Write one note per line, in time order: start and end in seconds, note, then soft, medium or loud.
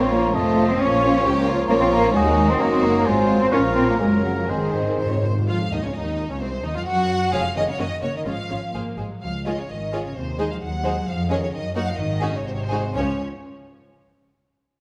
0.00 0.34 A#1 medium
0.00 1.66 F3 medium
0.00 0.13 C4 medium
0.00 0.34 C#4 medium
0.00 0.35 F4 medium
0.00 0.35 A#4 medium
0.00 0.34 C#5 medium
0.00 0.13 C6 medium
0.11 0.35 A#3 loud
0.11 0.20 F4 medium
0.11 0.20 C#5 medium
0.11 0.35 A#5 medium
0.34 0.80 F1 medium
0.34 0.68 A3 loud
0.34 0.80 C4 medium
0.34 0.79 F4 medium
0.34 0.80 C5 medium
0.34 0.81 D#5 medium
0.34 0.67 A5 medium
0.57 0.65 F4 medium
0.57 0.65 C5 medium
0.67 0.80 C4 loud
0.67 0.73 C6 medium
0.79 1.24 A#1 medium
0.79 1.24 A#3 medium
0.79 1.47 C#4 loud
0.79 1.25 F4 medium
0.79 1.24 C#5 medium
0.79 1.69 C#5 medium
0.79 1.45 C#6 loud
1.03 1.11 F4 medium
1.03 1.11 C#5 medium
1.23 1.69 C#2 medium
1.23 1.69 A#3 medium
1.23 1.47 G4 medium
1.23 1.68 A#4 medium
1.47 1.68 F4 medium
1.47 1.55 F4 medium
1.47 1.55 C#5 medium
1.67 2.14 A#1 medium
1.67 2.16 F3 medium
1.67 1.74 A#3 loud
1.67 2.16 C#4 medium
1.67 2.14 F4 medium
1.67 2.13 F4 medium
1.67 2.13 A#4 medium
1.67 2.17 C#5 medium
1.67 2.12 C#5 medium
1.67 1.73 A#5 medium
1.80 1.86 C4 medium
1.80 1.85 C6 loud
1.91 2.15 A#3 loud
1.91 2.13 A#5 loud
2.13 2.60 D#2 medium
2.13 2.59 F#3 medium
2.13 2.49 G#3 loud
2.13 2.61 D#4 medium
2.13 2.61 F#4 medium
2.13 2.60 F#4 medium
2.13 3.06 A#4 medium
2.13 3.05 A#4 medium
2.13 2.60 D#5 medium
2.13 2.51 G#5 loud
2.50 2.61 C4 loud
2.50 2.61 C6 medium
2.60 3.05 F#1 medium
2.60 3.05 F#3 medium
2.60 2.72 A#3 medium
2.60 3.06 C#4 medium
2.60 3.06 D#4 medium
2.60 3.06 F#4 medium
2.60 3.07 D#5 medium
2.60 2.70 A#5 medium
2.71 2.84 C4 medium
2.71 2.85 C6 loud
2.83 3.06 A#3 loud
2.83 3.07 A#5 medium
3.05 3.52 G#1 medium
3.05 3.54 F#3 medium
3.05 3.41 G#3 loud
3.05 3.53 C4 medium
3.05 3.52 F4 medium
3.05 3.52 F#4 medium
3.05 3.54 C5 medium
3.05 3.53 C5 medium
3.05 3.52 C5 medium
3.05 3.40 G#5 medium
3.40 3.46 C4 loud
3.40 3.53 C6 medium
3.52 3.99 A#1 medium
3.52 4.01 F3 medium
3.52 4.00 A#3 medium
3.52 3.61 C#4 loud
3.52 4.00 F4 medium
3.52 4.49 A#4 medium
3.52 3.99 A#4 medium
3.52 4.01 C#5 medium
3.52 3.75 C#6 medium
3.75 3.88 C4 medium
3.75 3.90 C6 medium
3.89 3.94 A#3 medium
3.89 3.99 A#5 medium
3.99 4.49 F#1 medium
3.99 4.51 C#3 medium
3.99 4.24 G#3 medium
3.99 4.50 C#4 medium
3.99 4.50 F#4 medium
3.99 4.50 A#4 medium
3.99 4.51 A#4 medium
3.99 4.50 A#4 medium
3.99 4.06 G#5 medium
4.24 4.30 F#3 medium
4.24 4.39 F#5 medium
4.37 4.43 F3 medium
4.37 4.48 F5 medium
4.48 4.99 G#1 medium
4.48 4.57 G#2 soft
4.48 5.24 D#3 medium
4.48 5.23 D#3 medium
4.48 5.28 C4 medium
4.48 5.23 G#4 soft
4.48 4.95 G#4 medium
4.48 5.26 C5 medium
4.48 5.25 C5 medium
4.48 5.23 C5 soft
4.48 5.23 D#5 medium
4.58 4.65 G#2 soft
4.66 4.73 G#2 soft
4.74 4.81 G#2 soft
4.82 4.89 G#2 soft
4.90 4.97 G#2 soft
4.98 5.05 G#2 soft
4.98 5.48 G#2 soft
4.98 5.11 C5 medium
5.06 5.13 G#2 medium
5.12 5.21 G#2 medium
5.12 5.25 C#5 medium
5.22 5.29 G#2 medium
5.22 5.49 C5 soft
5.30 5.38 G#2 medium
5.39 5.46 G#2 medium
5.48 5.71 F2 medium
5.48 5.71 F3 medium
5.48 5.56 F4 medium
5.48 5.57 F4 medium
5.48 5.70 F5 medium
5.72 5.77 D#2 soft
5.72 5.77 D#3 medium
5.72 5.77 D#4 medium
5.72 5.84 D#4 medium
5.72 5.84 D#5 medium
5.84 5.88 C#2 medium
5.84 5.89 C#3 soft
5.84 5.95 C#4 soft
5.84 5.95 C#5 medium
5.95 6.29 D#2 medium
5.95 6.30 D#3 medium
5.95 6.29 D#4 medium
5.95 6.30 D#4 medium
5.95 6.30 D#5 medium
6.30 6.41 C#2 medium
6.30 6.42 C#3 medium
6.30 6.34 C#4 medium
6.30 6.42 C#4 medium
6.30 6.41 C#5 medium
6.40 6.64 C2 medium
6.40 6.65 C3 medium
6.40 6.49 C4 medium
6.40 6.50 C4 medium
6.40 6.64 C5 medium
6.64 6.76 D#2 medium
6.64 6.70 D#3 medium
6.64 6.69 D#4 medium
6.64 6.76 D#4 medium
6.64 6.76 D#5 medium
6.75 6.87 F2 medium
6.75 6.81 F3 medium
6.75 6.80 F4 medium
6.75 6.88 F4 medium
6.75 6.81 F5 medium
6.86 7.32 F#2 medium
6.86 7.33 F#3 medium
6.86 7.32 F#4 medium
6.86 7.33 F#4 medium
6.86 7.32 F#5 medium
7.33 7.41 F1 medium
7.33 7.42 F3 medium
7.33 7.42 G#3 medium
7.33 7.42 C#4 medium
7.33 7.41 G#4 medium
7.33 7.41 C#5 medium
7.33 7.56 F5 loud
7.56 7.64 F1 medium
7.56 7.61 D#3 medium
7.56 7.64 G#3 medium
7.56 7.64 C#4 medium
7.56 7.64 G#4 medium
7.56 7.64 C#5 medium
7.56 7.67 D#5 medium
7.68 7.73 C#3 medium
7.68 7.79 C#5 medium
7.79 7.87 F#1 medium
7.79 7.88 D#3 medium
7.79 7.87 A#3 medium
7.79 7.87 C#4 medium
7.79 7.87 F#4 medium
7.79 7.87 C#5 medium
7.79 8.03 D#5 medium
8.02 8.11 F#1 medium
8.02 8.08 C#3 medium
8.02 8.10 A#3 soft
8.02 8.10 C#4 soft
8.02 8.10 F#4 soft
8.02 8.10 C#5 soft
8.02 8.14 C#5 medium
8.15 8.26 D#3 medium
8.15 8.21 D#5 medium
8.26 8.34 G#1 medium
8.26 8.74 F3 medium
8.26 8.34 G#3 soft
8.26 8.34 C#4 soft
8.26 8.34 F4 soft
8.26 8.34 C#5 soft
8.26 8.74 F5 medium
8.50 8.58 G#1 soft
8.50 8.58 G#3 soft
8.50 8.58 C#4 soft
8.50 8.58 F4 soft
8.50 8.58 C#5 soft
8.74 8.82 G#1 soft
8.74 8.96 A#3 medium
8.74 8.82 G#4 soft
8.74 8.82 C5 soft
8.98 9.06 G#1 soft
8.98 9.10 G#3 soft
8.98 9.06 G#4 soft
8.98 9.06 C5 soft
9.11 9.22 F#3 soft
9.22 9.61 C#2 medium
9.22 9.30 F3 medium
9.22 9.44 F5 medium
9.45 9.51 D#3 soft
9.45 9.57 G#3 medium
9.45 9.57 F4 soft
9.45 9.56 G#4 soft
9.45 9.56 C#5 soft
9.45 9.57 D#5 medium
9.58 9.63 C#3 soft
9.58 9.69 C#5 medium
9.69 10.07 G#1 soft
9.69 10.03 D#3 soft
9.69 10.04 D#5 medium
9.93 10.03 G#3 soft
9.93 10.03 F4 soft
9.93 10.03 G#4 soft
9.93 10.03 C#5 soft
10.04 10.15 C#3 medium
10.04 10.16 C#5 soft
10.15 10.54 D#2 medium
10.15 10.38 C3 medium
10.15 10.38 C5 medium
10.38 10.49 D#3 medium
10.38 10.49 G#3 soft
10.38 10.49 D#4 soft
10.38 10.49 G#4 soft
10.38 10.49 C5 soft
10.38 10.50 D#5 medium
10.50 10.61 F3 soft
10.50 10.55 F5 medium
10.61 10.99 D#2 soft
10.61 11.06 F#3 medium
10.61 11.06 F#5 medium
10.84 10.95 G#3 soft
10.84 10.95 D#4 medium
10.84 10.95 G#4 soft
10.84 10.95 C5 soft
11.07 11.45 F2 medium
11.07 11.30 F3 medium
11.07 11.30 F5 medium
11.30 11.41 D#3 medium
11.30 11.40 G#3 medium
11.30 11.40 C#4 medium
11.30 11.41 G#4 medium
11.30 11.41 C#5 soft
11.30 11.41 D#5 medium
11.41 11.53 C#3 soft
11.41 11.53 C#5 medium
11.53 11.91 F#2 medium
11.53 11.61 D#3 medium
11.53 11.75 D#5 medium
11.75 11.86 F#3 medium
11.75 11.86 A#3 medium
11.75 11.86 D#4 medium
11.75 11.86 F#4 medium
11.75 11.86 A#4 medium
11.75 11.87 F#5 medium
11.86 11.98 F3 medium
11.86 11.98 F5 medium
11.98 12.37 G#1 medium
11.98 12.34 D#3 medium
11.98 12.33 D#5 medium
12.21 12.33 C#4 medium
12.21 12.33 D#4 medium
12.21 12.32 F#4 medium
12.21 12.32 G#4 medium
12.34 12.46 C#3 medium
12.34 12.46 C#5 medium
12.46 12.87 G#1 medium
12.46 12.94 C3 medium
12.46 12.49 C5 medium
12.53 12.60 C#5 medium
12.61 12.95 C5 medium
12.70 12.82 G#3 soft
12.70 12.82 D#4 medium
12.70 12.82 F#4 medium
12.70 12.82 G#4 soft
12.94 13.22 C#2 medium
12.94 13.22 F3 medium
12.94 13.22 C#4 medium
12.94 13.22 C#4 soft
12.94 13.22 C#5 medium